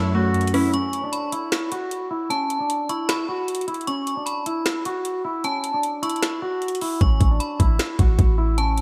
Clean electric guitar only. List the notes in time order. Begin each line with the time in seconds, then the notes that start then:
Already playing: E4
0.15 F#4
0.54 E4
0.74 C#4
1.04 D4
1.32 E4
1.72 F#4
2.11 E4
2.30 C#4
2.60 D4
2.89 E4
3.29 F#4
3.68 E4
3.88 C#4
4.17 D4
4.46 E4
4.86 F#4
5.25 E4
5.44 C#4
5.74 D4
6.03 E4
6.42 F#4
6.82 E4
7.01 C#4
7.31 D4
7.59 E4
7.99 F#4
8.38 E4
8.58 C#4